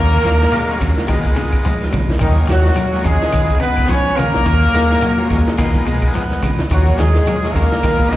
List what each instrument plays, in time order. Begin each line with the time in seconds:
Already playing: sub bass D#2, clean electric guitar D#3 F#3 C#4 F4 A#4, transistor combo organ F#3 A#3 C#4 F4, horn section A#3 A#4, trombone A#3
0.12 clean electric guitar C#4 F4 A#4, closed hi-hat, low conga, shekere
0.23 sub bass D#2, clean electric guitar D#3 F#3 C#4 F4 A#4, baritone saxophone A#3, snare, closed hi-hat, high conga, shekere
0.40 snare, closed hi-hat, shekere
0.52 transistor combo organ F#3 A#3 C#4 F4, baritone saxophone G#3, clean electric guitar A#3, closed hi-hat, high conga, claves, shekere
0.67 transistor combo organ F#3 A#3 C#4 F4, clean electric guitar C#4 F4 A#4, snare, high conga, shekere
0.80 sub bass D#2, clean electric guitar C#3 F#3 C#4 F4 A#4, baritone saxophone F#3, kick, open hi-hat, high conga, low conga, shekere
0.97 snare, closed hi-hat, shekere
1.08 sub bass C#2, clean electric guitar D#3 G#3 D#4 F4 B4, baritone saxophone G#3, transistor combo organ G#3 B3 D#4 F4, kick, closed hi-hat, high conga, claves, shekere
1.24 clean electric guitar D#4 F4 B4, kick, closed hi-hat, shekere
1.36 clean electric guitar C#3 G#3 D#4 F4, baritone saxophone G#3, snare, closed hi-hat, shekere
1.53 sub bass C#2, kick, closed hi-hat, claves, shekere
1.65 sub bass C#2, clean electric guitar F3, baritone saxophone G#3, closed hi-hat, high conga, shekere
1.81 sub bass C#2, clean electric guitar D#4 F4 B4, snare, shekere
1.93 clean electric guitar C#3 G#3 D#4 F4 B4, sub bass C#3, kick, closed hi-hat, high conga, low conga, claves, shekere
2.08 sub bass B1, snare, closed hi-hat, shekere
2.19 sub bass D#2, clean electric guitar D#3 F#3 C#4 F4 A#4, horn section D#3 D#4, trombone D#3, transistor combo organ F#3 A#3 C#4 F4, kick, closed hi-hat, claves, shekere
2.37 clean electric guitar F4 A#4, muted clean electric guitar stroke, closed hi-hat, shekere
2.47 sub bass D#2, clean electric guitar D#3 F#3 C#4 F4 A#4, horn section F#3 F#4, trombone F#3, snare, closed hi-hat, high conga, shekere
2.65 snare, closed hi-hat, shekere
2.76 clean electric guitar F#3, transistor combo organ F#3 A#3 C#4 F4, closed hi-hat, high conga, claves, shekere
2.92 transistor combo organ F#3 A#3 C#4 D#4, clean electric guitar C#4 F4 A#4, snare, closed hi-hat, high conga, shekere
3.03 sub bass D#2, clean electric guitar C#3 F#3 C#4 F4, horn section G#3 G#4, trombone G#3, muted clean electric guitar stroke, kick, open hi-hat, high conga, low conga, shekere
3.22 snare, closed hi-hat, shekere
3.32 sub bass C#2, clean electric guitar D#3 G#3 D#4 F4 B4, transistor combo organ G#3 B3 D#4 F4, kick, closed hi-hat, high conga, claves, shekere
3.48 clean electric guitar D#4 F4 B4, kick, closed hi-hat, shekere
3.60 clean electric guitar C#3 G#3 D#4 F4 B4, horn section B3 B4, trombone B3, closed hi-hat, shekere
3.77 sub bass C#2, kick, snare, closed hi-hat, claves, shekere
3.88 sub bass C#2, clean electric guitar F3, horn section C#4 C#5, trombone C#4, snare, closed hi-hat, high conga, shekere
4.05 sub bass C#2, clean electric guitar D#4 F4 B4, closed hi-hat, shekere
4.17 clean electric guitar C#3 G#3 D#4 F4 B4, sub bass C#3, horn section A#3 A#4, trombone A#3, closed hi-hat, high conga, low conga, claves, shekere
4.34 sub bass B1, snare, shekere
4.45 sub bass D#2, clean electric guitar D#3 F#3 C#4 F4 A#4, transistor combo organ F#3 A#3 C#4 F4, kick, closed hi-hat, claves, shekere
4.61 clean electric guitar C#4 A#4, muted clean electric guitar stroke, closed hi-hat, shekere
4.73 sub bass D#2, clean electric guitar D#3 F#3 C#4 F4 A#4, baritone saxophone G#3, snare, closed hi-hat, high conga, shekere
4.90 snare, closed hi-hat, shekere
5.01 transistor combo organ F#3 A#3 C#4 G#4, baritone saxophone F#3, clean electric guitar F#3, closed hi-hat, claves, shekere
5.16 baritone saxophone F#3, transistor combo organ F#3 A#3 C#4 F4, clean electric guitar C#4 F4 A#4, high conga, shekere
5.29 sub bass D#2, clean electric guitar F#3 C#4 F4 A#4, baritone saxophone G#3, kick, snare, open hi-hat, high conga, low conga, shekere
5.47 snare, closed hi-hat, shekere
5.57 sub bass C#2, clean electric guitar D#3 G#3 D#4 F4 B4, transistor combo organ G#3 B3 D#4 F4, baritone saxophone A#3, kick, closed hi-hat, high conga, claves, shekere
5.74 clean electric guitar D#4 F4 B4, kick, closed hi-hat, high conga, shekere
5.86 clean electric guitar B2 G#3 D#4 F4 B4, baritone saxophone G#3, closed hi-hat, shekere
6.02 sub bass C#2, kick, closed hi-hat, claves, shekere
6.14 sub bass C#2, clean electric guitar F3, baritone saxophone B3, closed hi-hat, high conga, shekere
6.30 sub bass C#2, clean electric guitar D#4 F4 B4, snare, shekere
6.43 clean electric guitar C#3 G#3 D#4 F4 B4, sub bass C#3, kick, closed hi-hat, high conga, low conga, claves, shekere
6.58 sub bass C#2, snare, closed hi-hat, shekere
6.71 sub bass D#2, clean electric guitar D#3 F#3 C#4 F4 A#4, horn section F#3 F#4, transistor combo organ F#3 A#3 C#4 F4, trombone F#3, kick, closed hi-hat, high conga, claves, shekere
6.86 clean electric guitar F4 A#4, closed hi-hat, low conga, shekere
6.97 sub bass D#2, clean electric guitar D#3 F#3 C#4 F4 A#4, horn section G#3 G#4, trombone G#3, snare, closed hi-hat, high conga, shekere
7.14 snare, closed hi-hat, shekere
7.27 clean electric guitar F#3, transistor combo organ F#3 A#3 C#4 F4, closed hi-hat, high conga, claves, shekere
7.43 transistor combo organ F#3 A#3 C#4 F4, clean electric guitar C#4 F4 A#4, snare, closed hi-hat, high conga, shekere
7.53 sub bass D#2, clean electric guitar C#3 F#3 C#4 F4 A#4, horn section A#3 A#4, trombone A#3, kick, snare, open hi-hat, high conga, low conga, shekere
7.72 snare, closed hi-hat, shekere
7.83 sub bass C#2, clean electric guitar D#3 G#3 D#4 F4 B4, transistor combo organ G#3 B3 D#4 F4, kick, closed hi-hat, high conga, claves, shekere
7.98 clean electric guitar D#4 F4 B4, kick, closed hi-hat, high conga, shekere
8.09 clean electric guitar C#3 G#3 D#4 F4 B4, horn section D#4 D#5, trombone D#4, snare, closed hi-hat, shekere